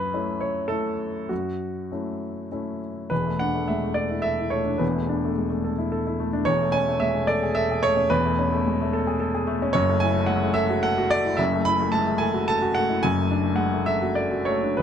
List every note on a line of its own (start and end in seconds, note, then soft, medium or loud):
0.00 0.11 F#2 medium
0.00 0.40 B4 medium
0.14 0.66 A3 soft
0.14 0.66 C#4 soft
0.14 0.66 E4 soft
0.41 0.70 C#5 medium
0.68 1.26 A3 soft
0.68 1.26 C#4 soft
0.68 1.26 E4 soft
0.68 1.29 A4 medium
1.29 1.90 F#2 soft
1.29 2.80 F#4 medium
1.92 2.47 A3 soft
1.92 2.48 C#4 soft
1.92 2.48 E4 soft
2.52 3.07 A3 soft
2.52 3.07 C#4 soft
2.52 3.07 E4 soft
3.10 4.77 E1 soft
3.10 4.77 E2 soft
3.10 3.39 B4 medium
3.26 3.49 A3 soft
3.39 3.63 D4 soft
3.39 3.68 F#5 medium
3.55 3.77 A3 soft
3.68 3.83 G#3 soft
3.68 3.96 E5 medium
3.83 4.05 A3 soft
3.94 4.19 A4 soft
3.94 4.23 D5 medium
4.10 4.33 E4 soft
4.22 4.46 A4 soft
4.22 4.51 E5 medium
4.39 4.62 E4 soft
4.50 4.75 A3 soft
4.50 4.80 C#5 medium
4.65 4.89 D4 soft
4.78 6.43 E1 medium
4.78 6.43 E2 medium
4.78 6.19 B4 medium
4.95 5.17 A3 soft
5.09 5.32 D4 medium
5.25 5.46 A3 soft
5.37 5.51 G#3 soft
5.50 5.72 A3 soft
5.64 5.87 A4 soft
5.78 6.01 E4 medium
5.92 6.14 A4 medium
6.07 6.29 E4 medium
6.20 6.42 A3 medium
6.33 6.48 D4 medium
6.45 8.07 E1 medium
6.45 8.07 E2 medium
6.45 6.74 C#5 loud
6.61 6.83 A3 soft
6.72 6.97 C#4 medium
6.72 7.01 G#5 loud
6.87 7.10 A3 medium
7.00 7.16 G#3 soft
7.00 7.29 E5 medium
7.15 7.38 A3 medium
7.27 7.51 A4 medium
7.27 7.56 D5 medium
7.43 7.65 G#4 medium
7.55 7.79 A4 medium
7.55 7.83 E5 loud
7.71 7.93 G#4 medium
7.83 8.06 A3 medium
7.83 8.11 C#5 loud
7.96 8.19 C#4 medium
8.10 9.70 E1 medium
8.10 9.71 E2 medium
8.10 9.47 B4 loud
8.24 8.46 A3 medium
8.39 8.60 C#4 medium
8.52 8.74 A3 medium
8.67 8.80 G#3 medium
8.81 9.02 A3 medium
8.93 9.15 A4 medium
9.07 9.29 G#4 medium
9.20 9.42 A4 medium
9.34 9.56 G#4 medium
9.47 9.70 A3 medium
9.62 9.76 C#4 medium
9.73 11.35 F#1 medium
9.73 11.35 F#2 medium
9.73 10.01 C#5 loud
9.89 10.11 A3 medium
10.00 10.24 E4 medium
10.00 10.28 G#5 loud
10.15 10.37 A3 medium
10.26 10.43 G#3 medium
10.26 10.55 F#5 medium
10.43 10.65 A3 medium
10.54 10.78 A4 medium
10.54 10.83 E5 loud
10.70 10.92 F#4 medium
10.83 11.06 A4 medium
10.83 11.11 F#5 loud
10.98 11.20 F#4 medium
11.10 11.34 A3 medium
11.10 11.39 D5 loud
11.25 11.47 E4 medium
11.37 12.99 F#1 medium
11.37 13.00 F#2 medium
11.37 11.65 E5 medium
11.53 11.75 A3 medium
11.65 11.89 E4 medium
11.65 11.93 B5 loud
11.80 12.02 A3 medium
11.92 12.08 G#3 medium
11.92 12.20 A5 medium
12.07 12.29 A3 medium
12.18 12.43 A4 medium
12.18 12.47 G#5 loud
12.34 12.57 F#4 medium
12.48 12.71 A4 medium
12.48 12.76 A5 loud
12.62 12.85 F#4 medium
12.74 12.99 A3 medium
12.74 13.03 F#5 medium
12.89 13.03 E4 medium
13.03 14.77 F#1 medium
13.03 14.78 F#2 medium
13.03 13.59 G#5 loud
13.18 13.40 A3 medium
13.31 13.53 D4 medium
13.44 13.68 A3 medium
13.56 13.73 G#3 soft
13.56 13.87 F#5 medium
13.73 13.98 A3 soft
13.86 14.13 A4 medium
13.86 14.18 E5 medium
14.02 14.28 F#4 medium
14.15 14.43 A4 medium
14.15 14.48 D5 medium
14.32 14.58 F#4 soft
14.45 14.74 A3 medium
14.45 14.80 C#5 medium
14.63 14.82 D4 soft
14.77 14.82 F#1 medium
14.77 14.82 F#2 medium
14.77 14.82 B4 medium